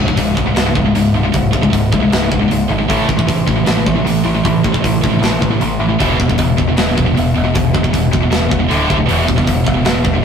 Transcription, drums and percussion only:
0.08 kick
0.17 kick, open hi-hat
0.37 kick
0.56 snare, open hi-hat
0.75 kick
0.95 open hi-hat
1.34 kick, open hi-hat
1.53 kick
1.63 kick
1.73 kick, open hi-hat
1.93 kick
2.12 snare, open hi-hat
2.32 kick
2.51 open hi-hat
2.90 kick, open hi-hat
3.09 kick
3.19 kick
3.29 kick, open hi-hat
3.48 kick
3.66 snare, open hi-hat
3.87 kick
4.07 open hi-hat
4.45 kick, open hi-hat
4.64 kick
4.74 kick
4.84 kick, open hi-hat
5.04 kick
5.23 snare, open hi-hat
5.42 kick
5.61 open hi-hat
6.00 kick, open hi-hat
6.20 kick
6.30 kick
6.38 kick, open hi-hat
6.58 kick
6.77 snare, open hi-hat
6.98 kick
7.17 open hi-hat
7.55 kick, open hi-hat
7.75 kick
7.84 kick
7.93 kick, open hi-hat
8.13 kick
8.32 snare, open hi-hat
8.51 kick
8.71 open hi-hat
8.90 kick
9.09 open hi-hat
9.28 kick
9.38 kick
9.47 kick, open hi-hat
9.67 kick
9.85 snare, open hi-hat
10.05 kick

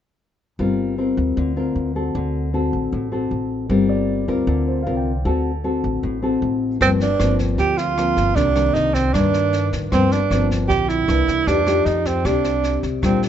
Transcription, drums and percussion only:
6.81 kick, cross-stick, snare
7.00 snare
7.20 cross-stick, snare
7.39 kick, snare
7.58 kick, snare
7.78 snare
7.98 cross-stick, snare
8.17 kick, snare
8.36 kick, snare
8.56 cross-stick, snare
8.75 snare
8.95 kick, snare
9.14 kick, cross-stick, snare
9.34 snare
9.53 snare
9.73 kick, snare
9.92 kick, cross-stick, snare
10.12 snare
10.31 cross-stick, snare
10.51 kick, snare
10.70 kick, snare
10.89 snare
11.09 cross-stick, snare
11.28 kick, snare
11.47 kick, snare
11.67 cross-stick, snare
11.86 snare
12.05 kick, snare
12.25 kick, cross-stick, snare
12.44 snare
12.64 snare
12.83 kick, snare
13.03 kick, cross-stick, snare
13.23 snare

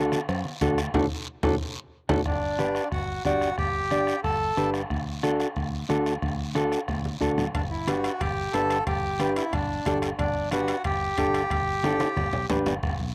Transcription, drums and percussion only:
0.12 bombo rim, high conga, short guiro
0.28 bombo rim, cowbell, high conga, long guiro
0.45 high conga
0.61 bombo low, bombo rim, cowbell, high conga, short guiro
0.78 bombo rim, short guiro
0.94 bombo low, high conga, high timbale, long guiro
1.43 bombo low, high conga, high timbale, long guiro
2.09 bombo low, high conga, high timbale, long guiro
2.26 bombo low, bombo rim, high conga, long guiro
2.59 bombo rim, high conga, short guiro
2.75 bombo rim, short guiro
2.92 bombo low, bombo rim, high conga, long guiro
3.25 bombo low, bombo rim, high conga, short guiro
3.41 bombo rim, short guiro
3.58 bombo low, bombo rim, high conga, long guiro
3.91 bombo rim, high conga, short guiro
4.07 bombo rim, short guiro
4.24 bombo low, bombo rim, high conga, long guiro
4.57 bombo rim, high conga, short guiro
4.74 bombo rim, short guiro
4.90 bombo low, bombo rim, high conga, long guiro
5.23 bombo rim, high conga, short guiro
5.40 bombo rim, short guiro
5.56 bombo low, bombo rim, high conga, long guiro
5.90 bombo rim, high conga, short guiro
6.06 bombo rim, short guiro
6.22 bombo low, bombo rim, high conga, long guiro
6.55 bombo rim, high conga, short guiro
6.72 bombo rim, short guiro
6.88 bombo low, bombo rim, high conga, long guiro
7.05 high conga
7.21 bombo low, bombo rim, short guiro
7.38 bombo rim, low conga, short guiro
7.55 bombo low, bombo rim, high conga, high timbale, long guiro
7.88 bombo rim, high conga, high timbale, short guiro
8.04 bombo rim, high timbale, short guiro
8.21 bombo low, bombo rim, high conga, high timbale, long guiro
8.54 bombo rim, high conga, high timbale, low timbale, short guiro
8.70 bombo rim, high timbale, short guiro
8.87 bombo low, bombo rim, high conga, high timbale, long guiro
9.20 bombo rim, high conga, high timbale, short guiro
9.36 bombo rim, high timbale, short guiro
9.53 bombo low, bombo rim, high conga, high timbale, long guiro
9.86 bombo low, bombo rim, high conga, high timbale, low timbale, short guiro
10.02 bombo rim, high timbale, short guiro
10.19 bombo low, bombo rim, high conga, high timbale, long guiro
10.51 bombo rim, high conga, high timbale, short guiro
10.68 bombo rim, high timbale, short guiro
10.84 bombo low, bombo rim, high conga, high timbale, long guiro
11.18 bombo low, bombo rim, high conga, high timbale, short guiro
11.34 bombo rim, high timbale, short guiro
11.50 bombo low, bombo rim, high conga, high timbale, long guiro
11.83 bombo rim, high conga, high timbale, short guiro
12.00 bombo rim, high conga, high timbale, short guiro
12.16 bombo low, bombo rim, high conga, low timbale, long guiro
12.33 low conga, low timbale
12.50 bombo low, bombo rim, low conga, low timbale, short guiro
12.66 bombo rim, low conga, low timbale, short guiro
12.83 bombo low, bombo rim, high conga, long guiro

